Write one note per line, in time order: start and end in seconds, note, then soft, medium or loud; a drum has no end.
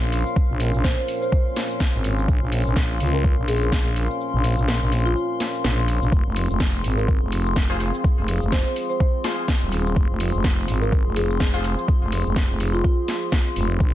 0.00 0.23 A#1 loud
0.00 6.08 A#3 medium
0.00 6.12 C#4 medium
0.00 6.08 F4 medium
0.00 8.00 A#4 medium
0.00 6.08 C5 medium
0.00 6.08 C#5 medium
0.00 13.80 F5 medium
0.00 13.94 C6 medium
0.12 open hi-hat medium
0.12 cabasa medium
0.26 cabasa soft
0.36 kick loud
0.36 cabasa soft
0.50 0.71 A#1 loud
0.60 open hi-hat loud
0.60 cabasa medium
0.74 0.96 A#1 loud
0.74 cabasa soft
0.84 0.93 C5 medium
0.84 kick loud
0.84 snare loud
0.84 cabasa soft
0.98 1.05 C5 medium
1.08 open hi-hat medium
1.08 cabasa medium
1.22 1.28 C5 medium
1.22 cabasa soft
1.32 1.41 C5 medium
1.32 kick loud
1.32 cabasa soft
1.56 snare medium
1.56 open hi-hat loud
1.56 cabasa medium
1.70 cabasa soft
1.80 kick loud
1.80 snare loud
1.80 cabasa soft
1.94 2.27 G#1 medium
2.04 open hi-hat medium
2.04 cabasa medium
2.18 cabasa soft
2.28 2.39 A#1 loud
2.28 kick loud
2.28 cabasa soft
2.42 2.63 A#1 loud
2.52 open hi-hat loud
2.52 cabasa medium
2.66 2.99 A#1 loud
2.66 cabasa soft
2.76 kick loud
2.76 snare loud
2.76 cabasa soft
3.00 3.35 C#2 loud
3.00 open hi-hat medium
3.00 cabasa medium
3.14 3.29 A#4 medium
3.14 cabasa soft
3.24 kick loud
3.24 cabasa soft
3.38 3.71 A#1 loud
3.48 3.65 G#4 medium
3.48 open hi-hat loud
3.48 cabasa medium
3.62 cabasa soft
3.72 4.07 A#1 medium
3.72 kick loud
3.72 snare loud
3.72 cabasa soft
3.96 open hi-hat medium
3.96 cabasa medium
4.10 cabasa soft
4.21 cabasa soft
4.34 4.55 A#1 loud
4.44 open hi-hat loud
4.44 cabasa medium
4.58 4.79 A#1 loud
4.58 cabasa soft
4.68 snare loud
4.68 cabasa soft
4.82 5.15 A#1 loud
4.92 open hi-hat medium
4.92 cabasa medium
5.06 5.12 F4 medium
5.06 cabasa soft
5.16 5.25 F4 medium
5.16 cabasa soft
5.40 snare medium
5.40 open hi-hat loud
5.40 cabasa medium
5.54 cabasa soft
5.64 5.99 A#1 loud
5.64 snare loud
5.64 cabasa soft
5.88 open hi-hat medium
5.88 cabasa medium
6.02 6.11 A#1 loud
6.02 cabasa soft
6.12 6.23 F1 loud
6.12 13.80 C4 medium
6.12 13.94 F4 medium
6.12 13.76 G#4 medium
6.12 13.94 C5 medium
6.12 kick loud
6.12 cabasa soft
6.25 6.47 F1 loud
6.36 open hi-hat loud
6.36 cabasa medium
6.49 6.83 F1 loud
6.49 cabasa soft
6.58 13.94 G#4 medium
6.58 kick loud
6.58 snare loud
6.58 cabasa soft
6.84 7.19 G#1 loud
6.84 open hi-hat medium
6.84 cabasa medium
6.97 7.13 A#4 medium
6.97 cabasa soft
7.08 kick loud
7.08 cabasa soft
7.21 7.55 F1 loud
7.32 open hi-hat loud
7.32 cabasa medium
7.46 cabasa soft
7.56 7.91 F1 medium
7.56 kick loud
7.56 snare loud
7.56 cabasa soft
7.70 7.76 F4 medium
7.70 7.76 G#4 medium
7.70 7.76 C5 loud
7.80 open hi-hat medium
7.80 cabasa medium
7.94 cabasa soft
8.04 kick loud
8.04 cabasa soft
8.18 8.39 F1 loud
8.28 open hi-hat loud
8.28 cabasa medium
8.42 8.63 F1 loud
8.42 cabasa soft
8.52 8.61 C5 medium
8.52 kick loud
8.52 snare loud
8.52 cabasa soft
8.66 8.72 C5 medium
8.76 open hi-hat loud
8.76 cabasa medium
8.89 8.96 C5 medium
8.89 cabasa soft
9.00 9.09 C5 medium
9.00 kick loud
9.00 cabasa soft
9.24 11.50 F4 medium
9.24 11.50 G#4 medium
9.24 11.50 C5 medium
9.24 snare medium
9.24 open hi-hat loud
9.24 cabasa medium
9.38 cabasa soft
9.48 kick loud
9.48 snare loud
9.48 cabasa soft
9.62 9.95 D#1 loud
9.72 open hi-hat medium
9.72 cabasa medium
9.86 cabasa soft
9.96 10.07 F1 loud
9.96 kick loud
9.96 cabasa soft
10.10 10.31 F1 loud
10.20 open hi-hat loud
10.20 cabasa medium
10.34 10.67 F1 loud
10.34 cabasa soft
10.44 kick loud
10.44 snare loud
10.44 cabasa soft
10.68 11.03 G#1 loud
10.68 open hi-hat loud
10.68 cabasa medium
10.82 10.97 A#4 medium
10.82 cabasa soft
10.92 kick loud
10.92 cabasa soft
11.05 11.39 F1 loud
11.16 11.33 G#4 medium
11.16 open hi-hat loud
11.16 cabasa medium
11.30 cabasa soft
11.40 11.75 F1 medium
11.40 kick loud
11.40 snare loud
11.40 cabasa soft
11.54 11.60 F4 medium
11.54 11.60 G#4 medium
11.54 11.60 C5 loud
11.64 open hi-hat loud
11.64 cabasa medium
11.78 cabasa soft
11.88 kick loud
11.88 cabasa soft
12.02 12.23 F1 loud
12.12 open hi-hat loud
12.12 cabasa medium
12.26 12.47 F1 loud
12.26 cabasa soft
12.36 kick loud
12.36 snare loud
12.36 cabasa soft
12.49 12.83 F1 loud
12.60 open hi-hat loud
12.60 cabasa medium
12.73 12.80 F4 medium
12.73 cabasa soft
12.84 12.93 F4 medium
12.84 kick loud
12.84 cabasa soft
13.08 snare medium
13.08 open hi-hat loud
13.08 cabasa medium
13.22 cabasa soft
13.32 kick loud
13.32 snare loud
13.32 cabasa soft
13.56 13.79 F1 loud
13.56 open hi-hat loud
13.56 cabasa medium
13.70 cabasa soft
13.80 13.91 A#1 loud
13.80 13.94 A#3 medium
13.80 13.94 C#4 medium
13.80 kick loud
13.80 cabasa soft